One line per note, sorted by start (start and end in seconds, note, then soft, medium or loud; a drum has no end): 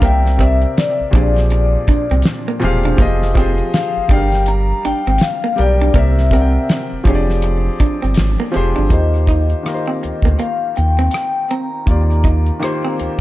0.00 0.66 C2 loud
0.00 0.36 C3 medium
0.00 0.19 A#3 medium
0.00 0.37 C4 medium
0.00 0.37 A#4 medium
0.00 0.38 D5 medium
0.00 0.37 G5 loud
0.00 kick loud
0.00 closed hi-hat medium
0.05 0.38 E5 medium
0.25 snare soft
0.37 1.12 C3 medium
0.37 1.12 C4 medium
0.37 0.57 C4 medium
0.37 1.13 A#4 medium
0.37 1.14 D5 medium
0.37 kick loud
0.37 closed hi-hat medium
0.41 0.57 E5 medium
0.41 1.14 E5 medium
0.62 closed hi-hat soft
0.78 2.21 D5 medium
0.78 snare loud
0.78 closed hi-hat medium
1.00 1.06 A#1 soft
1.11 1.77 A#1 loud
1.11 2.52 A#2 medium
1.11 2.53 F3 medium
1.11 2.53 C4 medium
1.11 2.54 G4 medium
1.11 2.54 G#4 medium
1.11 kick loud
1.15 1.31 D4 medium
1.15 2.55 D5 medium
1.15 closed hi-hat medium
1.36 snare soft
1.36 closed hi-hat soft
1.50 muted hollow-body jazz guitar stroke soft
1.50 closed hi-hat medium
1.88 1.97 C2 soft
1.88 2.05 D4 medium
1.88 kick medium
1.88 closed hi-hat medium
2.11 2.23 C2 medium
2.11 2.22 C4 medium
2.11 closed hi-hat soft
2.22 snare loud
2.22 closed hi-hat medium
2.48 2.59 A#3 medium
2.60 2.94 E1 medium
2.60 2.95 A#2 medium
2.60 2.95 F3 medium
2.60 2.96 C4 medium
2.60 2.97 G4 medium
2.60 2.97 G#4 medium
2.60 closed hi-hat medium
2.64 2.98 F5 loud
2.64 muted hollow-body jazz guitar stroke soft
2.84 2.96 D4 medium
2.84 closed hi-hat soft
2.97 3.62 F1 loud
2.97 3.33 F3 medium
2.97 3.16 A#3 loud
2.97 3.33 F4 medium
2.97 3.34 G4 medium
2.97 3.34 G#4 medium
2.97 kick loud
2.97 closed hi-hat medium
3.02 3.35 D#5 loud
3.22 snare soft
3.34 4.09 F3 medium
3.34 3.53 C4 medium
3.34 4.09 F4 medium
3.34 4.08 G4 medium
3.34 4.09 G#4 medium
3.34 kick medium
3.34 closed hi-hat medium
3.39 4.11 C5 medium
3.58 closed hi-hat soft
3.74 4.11 F5 medium
3.74 snare loud
3.74 closed hi-hat medium
3.97 4.02 G1 medium
4.08 4.73 G1 loud
4.08 5.49 G3 medium
4.08 4.27 D4 medium
4.08 5.50 G4 medium
4.08 4.18 G#4 medium
4.08 5.51 D5 medium
4.08 4.45 G5 medium
4.08 kick loud
4.08 closed hi-hat medium
4.13 5.51 F5 medium
4.17 5.54 A#4 medium
4.32 snare soft
4.32 closed hi-hat soft
4.46 4.85 A#5 loud
4.46 muted hollow-body jazz guitar stroke soft
4.46 closed hi-hat medium
4.85 4.94 G#1 soft
4.85 5.01 D4 medium
4.85 5.22 G5 loud
4.85 closed hi-hat medium
5.07 5.19 G#1 medium
5.07 5.18 C4 medium
5.07 closed hi-hat soft
5.18 5.59 F5 loud
5.18 snare loud
5.18 closed hi-hat medium
5.44 5.55 A#3 medium
5.56 5.90 B1 medium
5.56 5.92 G3 medium
5.56 5.92 G4 medium
5.56 5.93 A#4 medium
5.56 5.93 D5 medium
5.56 5.97 D5 medium
5.56 muted hollow-body jazz guitar stroke soft
5.56 closed hi-hat medium
5.61 5.94 G5 medium
5.82 5.92 D4 medium
5.93 6.58 C2 loud
5.93 6.28 C3 medium
5.93 6.12 A#3 loud
5.93 6.29 C4 medium
5.93 6.30 A#4 medium
5.93 6.30 D5 medium
5.93 6.65 E5 medium
5.93 kick loud
5.93 closed hi-hat medium
5.98 6.31 E5 medium
6.18 snare soft
6.30 7.05 C3 medium
6.30 7.04 C4 medium
6.30 6.50 C4 medium
6.30 7.06 A#4 medium
6.30 7.07 D5 medium
6.30 kick loud
6.30 closed hi-hat medium
6.35 6.41 F#5 medium
6.41 7.10 G5 medium
6.69 snare loud
6.69 closed hi-hat medium
6.92 6.98 F1 soft
7.04 7.69 F1 loud
7.04 8.45 F3 medium
7.04 8.46 C4 medium
7.04 7.24 D4 medium
7.04 8.46 G4 medium
7.04 8.47 G#4 medium
7.04 kick loud
7.04 closed hi-hat medium
7.08 7.15 C#5 medium
7.15 8.51 D5 loud
7.29 snare soft
7.42 muted hollow-body jazz guitar stroke soft
7.42 closed hi-hat medium
7.80 7.90 G1 soft
7.80 7.97 D4 medium
7.80 kick loud
7.80 closed hi-hat medium
8.02 8.16 G1 medium
8.02 8.14 C4 medium
8.02 closed hi-hat soft
8.14 snare loud
8.14 closed hi-hat medium
8.19 8.37 G#1 loud
8.40 8.51 A#3 medium
8.52 8.88 F3 medium
8.52 8.88 C4 medium
8.52 8.89 G4 medium
8.52 8.90 G#4 medium
8.52 muted hollow-body jazz guitar stroke soft
8.52 closed hi-hat medium
8.56 8.74 F1 loud
8.56 8.90 C5 loud
8.76 8.90 G1 medium
8.76 8.87 D4 medium
8.89 9.54 D#2 medium
8.89 9.60 D#3 medium
8.89 9.60 A#3 medium
8.89 9.61 F4 medium
8.89 9.62 G4 medium
8.89 10.44 D#5 medium
8.89 kick loud
8.89 closed hi-hat medium
8.93 9.62 C5 medium
9.14 cross-stick soft
9.27 9.45 D#4 medium
9.27 kick medium
9.27 closed hi-hat medium
9.50 closed hi-hat soft
9.63 11.04 D#3 medium
9.63 11.05 A#3 medium
9.63 11.06 F4 medium
9.63 11.06 G4 medium
9.63 cross-stick medium
9.63 closed hi-hat medium
9.68 9.74 A#4 medium
9.74 11.10 C5 medium
9.87 9.99 C4 medium
10.03 10.13 D2 soft
10.03 muted hollow-body jazz guitar stroke soft
10.03 closed hi-hat medium
10.22 10.37 D2 medium
10.22 10.36 A#3 medium
10.22 kick medium
10.22 cross-stick soft
10.22 closed hi-hat soft
10.39 10.56 A#3 medium
10.39 10.77 F5 medium
10.39 closed hi-hat medium
10.76 11.09 D#2 medium
10.76 11.12 G5 medium
10.76 muted hollow-body jazz guitar stroke soft
10.76 closed hi-hat medium
10.99 11.10 C4 medium
11.11 11.51 G5 medium
11.11 cross-stick loud
11.11 closed hi-hat medium
11.51 11.68 C4 medium
11.51 12.94 A#5 medium
11.51 closed hi-hat medium
11.86 12.51 D#2 loud
11.86 12.57 D#3 medium
11.86 12.57 A#3 medium
11.86 12.58 F4 medium
11.86 12.58 G4 medium
11.86 kick loud
11.86 closed hi-hat medium
11.91 12.59 D5 medium
12.10 cross-stick soft
12.24 12.42 D#4 medium
12.24 kick medium
12.24 closed hi-hat medium
12.46 closed hi-hat soft
12.59 13.21 D#3 medium
12.59 13.21 A#3 medium
12.59 13.21 F4 medium
12.59 13.21 G4 medium
12.59 cross-stick medium
12.59 closed hi-hat medium
12.64 13.21 C5 medium
12.85 12.96 C4 medium
13.00 13.09 D2 soft
13.00 muted hollow-body jazz guitar stroke soft
13.00 closed hi-hat medium